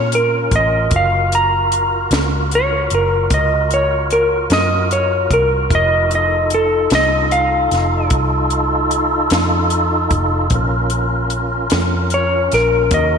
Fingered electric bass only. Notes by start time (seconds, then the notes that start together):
Already playing: A#2
0.52 A1
0.92 F#1
2.11 C#2
2.91 F#1
3.31 C#2
4.50 F#2
5.31 C2
5.71 F1
6.91 C2
7.72 F1
8.11 C2
9.31 F2
10.11 F1
10.51 A#1
11.72 F2
12.53 A#1
12.91 D#2